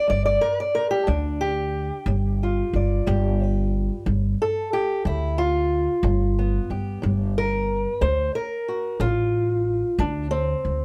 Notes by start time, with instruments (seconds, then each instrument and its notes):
0.08 upright bass G1, steel-string acoustic guitar G3 D5
0.26 steel-string acoustic guitar D5
0.41 steel-string acoustic guitar A#4
0.60 steel-string acoustic guitar D5
0.75 steel-string acoustic guitar A#4
0.91 steel-string acoustic guitar G4
1.07 upright bass D2, steel-string acoustic guitar G3 D4
1.41 steel-string acoustic guitar G4
2.06 upright bass G1, steel-string acoustic guitar G3
2.43 steel-string acoustic guitar F4
2.73 upright bass G1, steel-string acoustic guitar D5
3.07 upright bass G1, steel-string acoustic guitar G3 G4
3.43 steel-string acoustic guitar B4
4.06 upright bass G1, steel-string acoustic guitar G2
4.42 steel-string acoustic guitar A4
4.73 steel-string acoustic guitar G4
5.05 upright bass D2, steel-string acoustic guitar G2 E4
5.38 steel-string acoustic guitar F4
6.03 upright bass G1, steel-string acoustic guitar G2
6.39 steel-string acoustic guitar B3
6.70 upright bass G1, steel-string acoustic guitar G4
7.02 upright bass G1, steel-string acoustic guitar G2
7.38 steel-string acoustic guitar A#4
8.01 upright bass D2, steel-string acoustic guitar D3 C5
8.35 steel-string acoustic guitar A#4
8.68 steel-string acoustic guitar F#4
9.00 upright bass A1, steel-string acoustic guitar D3 F4
9.99 upright bass D2, steel-string acoustic guitar D4
10.31 steel-string acoustic guitar C4
10.65 upright bass D2